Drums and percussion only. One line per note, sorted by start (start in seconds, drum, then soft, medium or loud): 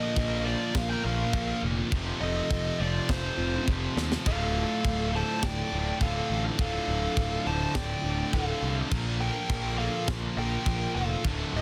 0.16 kick medium
0.16 crash medium
0.75 kick loud
0.75 snare loud
0.75 crash medium
1.33 kick medium
1.33 crash medium
1.92 kick loud
1.92 crash medium
2.50 kick medium
2.50 crash medium
3.09 kick loud
3.09 snare loud
3.09 crash medium
3.67 kick medium
3.67 crash medium
3.97 snare medium
4.12 snare loud
4.26 kick loud
4.26 crash medium
4.84 kick medium
4.84 crash medium
5.43 kick loud
5.43 snare loud
5.43 crash medium
6.01 kick medium
6.01 crash medium
6.59 kick loud
6.59 crash medium
7.17 kick medium
7.17 crash medium
7.75 kick loud
7.75 snare loud
7.75 crash medium
8.33 kick medium
8.33 crash medium
8.92 kick loud
8.92 crash medium
9.49 kick medium
9.49 crash medium
10.08 kick loud
10.08 snare loud
10.08 crash medium
10.66 kick medium
10.66 crash medium
11.24 kick loud
11.24 crash medium